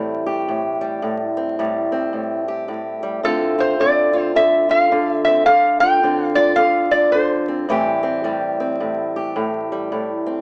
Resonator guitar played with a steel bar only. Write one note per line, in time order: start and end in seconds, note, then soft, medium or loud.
3.25 3.59 A4 medium
3.60 3.81 C5 medium
3.81 4.32 D5 medium
4.36 4.70 E5 medium
4.71 5.12 F5 medium
5.12 5.24 E5 medium
5.25 5.45 E5 medium
5.46 5.80 F5 loud
5.80 6.25 G5 loud
6.25 6.38 F5 loud
6.35 6.58 D5 medium
6.56 6.92 F5 loud
6.91 7.11 D5 medium
7.12 8.20 C5 medium